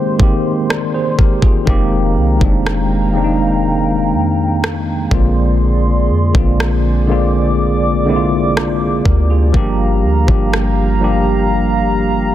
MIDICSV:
0, 0, Header, 1, 5, 480
1, 0, Start_track
1, 0, Tempo, 983607
1, 816, Time_signature, 4, 2, 24, 8
1, 6026, End_track
2, 0, Start_track
2, 0, Title_t, "Analog synth pad"
2, 0, Program_c, 0, 89
2, 0, Note_on_c, 0, 56, 84
2, 0, Note_on_c, 0, 67, 78
2, 0, Note_on_c, 0, 72, 71
2, 0, Note_on_c, 0, 84, 82
2, 797, Note_off_c, 0, 67, 0
2, 798, Note_off_c, 0, 56, 0
2, 798, Note_off_c, 0, 72, 0
2, 806, Note_off_c, 0, 84, 0
2, 815, Note_on_c, 0, 56, 81
2, 815, Note_on_c, 0, 77, 73
2, 816, Note_on_c, 0, 79, 69
2, 816, Note_on_c, 0, 82, 86
2, 2479, Note_off_c, 0, 56, 0
2, 2479, Note_off_c, 0, 77, 0
2, 2479, Note_off_c, 0, 79, 0
2, 2479, Note_off_c, 0, 82, 0
2, 2495, Note_on_c, 0, 74, 69
2, 2496, Note_on_c, 0, 68, 75
2, 2497, Note_on_c, 0, 84, 81
2, 3447, Note_off_c, 0, 84, 0
2, 3456, Note_on_c, 0, 86, 90
2, 4636, Note_off_c, 0, 68, 0
2, 4636, Note_off_c, 0, 74, 0
2, 4644, Note_off_c, 0, 86, 0
2, 4653, Note_on_c, 0, 77, 72
2, 4654, Note_on_c, 0, 67, 76
2, 4655, Note_on_c, 0, 82, 87
2, 6026, Note_off_c, 0, 67, 0
2, 6026, Note_off_c, 0, 77, 0
2, 6026, Note_off_c, 0, 82, 0
2, 6026, End_track
3, 0, Start_track
3, 0, Title_t, "Tine electric piano"
3, 0, Program_c, 1, 4
3, 0, Control_c, 1, 64, 127
3, 0, Note_on_c, 1, 51, 76
3, 0, Note_on_c, 1, 56, 73
3, 0, Note_on_c, 1, 58, 72
3, 0, Note_on_c, 1, 60, 74
3, 0, Note_on_c, 1, 67, 85
3, 50, Note_off_c, 1, 67, 0
3, 90, Note_off_c, 1, 51, 0
3, 90, Note_on_c, 1, 51, 79
3, 95, Note_off_c, 1, 56, 0
3, 95, Note_on_c, 1, 56, 72
3, 99, Note_off_c, 1, 58, 0
3, 99, Note_on_c, 1, 58, 71
3, 105, Note_off_c, 1, 60, 0
3, 105, Note_on_c, 1, 60, 71
3, 111, Note_on_c, 1, 67, 89
3, 340, Note_on_c, 1, 74, 62
3, 343, Note_off_c, 1, 67, 0
3, 452, Note_off_c, 1, 74, 0
3, 460, Note_on_c, 1, 72, 67
3, 463, Note_on_c, 1, 68, 57
3, 572, Note_off_c, 1, 72, 0
3, 574, Note_off_c, 1, 68, 0
3, 577, Note_on_c, 1, 70, 63
3, 581, Note_on_c, 1, 67, 52
3, 691, Note_off_c, 1, 70, 0
3, 693, Note_off_c, 1, 67, 0
3, 698, Note_on_c, 1, 68, 57
3, 701, Note_on_c, 1, 65, 51
3, 734, Note_off_c, 1, 51, 0
3, 736, Note_off_c, 1, 56, 0
3, 738, Note_off_c, 1, 58, 0
3, 741, Note_off_c, 1, 60, 0
3, 808, Note_on_c, 1, 51, 104
3, 813, Note_on_c, 1, 56, 93
3, 817, Note_on_c, 1, 58, 96
3, 822, Control_c, 1, 64, 0
3, 823, Note_on_c, 1, 60, 94
3, 827, Note_on_c, 1, 67, 108
3, 915, Control_c, 1, 64, 127
3, 925, Note_off_c, 1, 68, 0
3, 927, Note_off_c, 1, 65, 0
3, 1132, Note_off_c, 1, 51, 0
3, 1135, Note_off_c, 1, 56, 0
3, 1137, Note_off_c, 1, 58, 0
3, 1140, Note_off_c, 1, 60, 0
3, 1142, Note_off_c, 1, 67, 0
3, 1170, Note_on_c, 1, 51, 76
3, 1174, Note_on_c, 1, 56, 67
3, 1180, Note_on_c, 1, 58, 70
3, 1185, Note_on_c, 1, 60, 70
3, 1190, Note_on_c, 1, 62, 85
3, 1493, Note_off_c, 1, 51, 0
3, 1496, Note_off_c, 1, 56, 0
3, 1499, Note_off_c, 1, 58, 0
3, 1501, Note_off_c, 1, 60, 0
3, 1503, Note_off_c, 1, 62, 0
3, 1530, Note_on_c, 1, 51, 81
3, 1535, Note_on_c, 1, 56, 71
3, 1539, Note_on_c, 1, 58, 73
3, 1545, Note_on_c, 1, 60, 71
3, 1550, Note_on_c, 1, 62, 73
3, 1575, Note_off_c, 1, 62, 0
3, 1582, Note_on_c, 1, 63, 91
3, 2387, Note_off_c, 1, 51, 0
3, 2390, Note_off_c, 1, 56, 0
3, 2392, Note_off_c, 1, 58, 0
3, 2395, Note_off_c, 1, 60, 0
3, 2413, Note_off_c, 1, 63, 0
3, 2491, Note_on_c, 1, 50, 81
3, 2495, Note_on_c, 1, 56, 74
3, 2500, Note_on_c, 1, 58, 74
3, 2503, Control_c, 1, 64, 0
3, 2506, Note_on_c, 1, 60, 76
3, 2510, Note_on_c, 1, 65, 93
3, 2575, Control_c, 1, 64, 127
3, 3027, Note_off_c, 1, 50, 0
3, 3030, Note_off_c, 1, 56, 0
3, 3032, Note_off_c, 1, 58, 0
3, 3035, Note_off_c, 1, 60, 0
3, 3037, Note_off_c, 1, 65, 0
3, 3090, Note_on_c, 1, 50, 76
3, 3095, Note_on_c, 1, 56, 66
3, 3100, Note_on_c, 1, 58, 65
3, 3105, Note_on_c, 1, 60, 69
3, 3111, Note_on_c, 1, 65, 87
3, 3413, Note_off_c, 1, 50, 0
3, 3416, Note_off_c, 1, 56, 0
3, 3418, Note_off_c, 1, 58, 0
3, 3421, Note_off_c, 1, 60, 0
3, 3424, Note_off_c, 1, 65, 0
3, 3451, Note_on_c, 1, 50, 80
3, 3456, Note_on_c, 1, 56, 71
3, 3462, Note_on_c, 1, 58, 75
3, 3467, Note_on_c, 1, 60, 72
3, 3471, Note_on_c, 1, 65, 92
3, 3881, Note_off_c, 1, 50, 0
3, 3883, Note_off_c, 1, 56, 0
3, 3886, Note_off_c, 1, 58, 0
3, 3888, Note_off_c, 1, 60, 0
3, 3891, Note_off_c, 1, 65, 0
3, 3931, Note_on_c, 1, 50, 80
3, 3935, Note_on_c, 1, 56, 69
3, 3940, Note_on_c, 1, 58, 73
3, 3946, Note_on_c, 1, 60, 74
3, 3950, Note_on_c, 1, 64, 67
3, 3975, Note_off_c, 1, 64, 0
3, 3983, Note_on_c, 1, 65, 88
3, 4174, Note_off_c, 1, 65, 0
3, 4180, Note_on_c, 1, 65, 66
3, 4183, Note_on_c, 1, 62, 50
3, 4406, Note_off_c, 1, 65, 0
3, 4408, Note_off_c, 1, 62, 0
3, 4421, Note_on_c, 1, 70, 65
3, 4424, Note_on_c, 1, 67, 54
3, 4533, Note_off_c, 1, 70, 0
3, 4534, Note_off_c, 1, 67, 0
3, 4539, Note_on_c, 1, 68, 58
3, 4542, Note_on_c, 1, 65, 51
3, 4574, Note_off_c, 1, 50, 0
3, 4576, Note_off_c, 1, 56, 0
3, 4579, Note_off_c, 1, 58, 0
3, 4582, Note_off_c, 1, 60, 0
3, 4648, Note_on_c, 1, 53, 104
3, 4653, Note_on_c, 1, 55, 94
3, 4658, Note_on_c, 1, 58, 95
3, 4662, Control_c, 1, 64, 0
3, 4665, Note_on_c, 1, 62, 89
3, 4668, Note_on_c, 1, 67, 120
3, 4759, Control_c, 1, 64, 127
3, 4766, Note_off_c, 1, 68, 0
3, 4768, Note_off_c, 1, 65, 0
3, 4972, Note_off_c, 1, 53, 0
3, 4975, Note_off_c, 1, 55, 0
3, 4978, Note_off_c, 1, 58, 0
3, 4981, Note_off_c, 1, 62, 0
3, 4983, Note_off_c, 1, 67, 0
3, 5010, Note_on_c, 1, 53, 76
3, 5014, Note_on_c, 1, 55, 74
3, 5019, Note_on_c, 1, 58, 70
3, 5024, Note_on_c, 1, 62, 67
3, 5030, Note_on_c, 1, 67, 84
3, 5333, Note_off_c, 1, 53, 0
3, 5336, Note_off_c, 1, 55, 0
3, 5338, Note_off_c, 1, 58, 0
3, 5341, Note_off_c, 1, 62, 0
3, 5344, Note_off_c, 1, 67, 0
3, 5367, Note_on_c, 1, 53, 76
3, 5372, Note_on_c, 1, 55, 72
3, 5377, Note_on_c, 1, 58, 75
3, 5382, Note_on_c, 1, 62, 75
3, 5388, Note_on_c, 1, 67, 90
3, 6026, Note_off_c, 1, 53, 0
3, 6026, Note_off_c, 1, 55, 0
3, 6026, Note_off_c, 1, 58, 0
3, 6026, Note_off_c, 1, 62, 0
3, 6026, Note_off_c, 1, 67, 0
3, 6026, End_track
4, 0, Start_track
4, 0, Title_t, "808-style bass"
4, 0, Program_c, 2, 38
4, 816, Note_on_c, 2, 29, 105
4, 1057, Note_on_c, 2, 36, 97
4, 1064, Note_off_c, 2, 29, 0
4, 1171, Note_off_c, 2, 36, 0
4, 1177, Note_on_c, 2, 29, 101
4, 2016, Note_on_c, 2, 41, 100
4, 2024, Note_off_c, 2, 29, 0
4, 2477, Note_off_c, 2, 41, 0
4, 2495, Note_on_c, 2, 34, 97
4, 2977, Note_on_c, 2, 41, 93
4, 2984, Note_off_c, 2, 34, 0
4, 3090, Note_off_c, 2, 41, 0
4, 3098, Note_on_c, 2, 34, 96
4, 4398, Note_off_c, 2, 34, 0
4, 4419, Note_on_c, 2, 38, 93
4, 4648, Note_off_c, 2, 38, 0
4, 4657, Note_on_c, 2, 31, 102
4, 4897, Note_on_c, 2, 38, 92
4, 4904, Note_off_c, 2, 31, 0
4, 5011, Note_off_c, 2, 38, 0
4, 5018, Note_on_c, 2, 31, 105
4, 6026, Note_off_c, 2, 31, 0
4, 6026, End_track
5, 0, Start_track
5, 0, Title_t, "Drums"
5, 96, Note_on_c, 9, 36, 87
5, 144, Note_off_c, 9, 36, 0
5, 343, Note_on_c, 9, 37, 104
5, 392, Note_off_c, 9, 37, 0
5, 579, Note_on_c, 9, 36, 76
5, 628, Note_off_c, 9, 36, 0
5, 695, Note_on_c, 9, 36, 84
5, 744, Note_off_c, 9, 36, 0
5, 816, Note_on_c, 9, 36, 101
5, 865, Note_off_c, 9, 36, 0
5, 1177, Note_on_c, 9, 36, 93
5, 1226, Note_off_c, 9, 36, 0
5, 1301, Note_on_c, 9, 37, 114
5, 1349, Note_off_c, 9, 37, 0
5, 2263, Note_on_c, 9, 37, 111
5, 2312, Note_off_c, 9, 37, 0
5, 2496, Note_on_c, 9, 36, 98
5, 2544, Note_off_c, 9, 36, 0
5, 3098, Note_on_c, 9, 36, 96
5, 3147, Note_off_c, 9, 36, 0
5, 3222, Note_on_c, 9, 37, 113
5, 3271, Note_off_c, 9, 37, 0
5, 4182, Note_on_c, 9, 37, 107
5, 4231, Note_off_c, 9, 37, 0
5, 4419, Note_on_c, 9, 36, 76
5, 4468, Note_off_c, 9, 36, 0
5, 4656, Note_on_c, 9, 36, 99
5, 4705, Note_off_c, 9, 36, 0
5, 5018, Note_on_c, 9, 36, 93
5, 5066, Note_off_c, 9, 36, 0
5, 5141, Note_on_c, 9, 37, 111
5, 5190, Note_off_c, 9, 37, 0
5, 6026, End_track
0, 0, End_of_file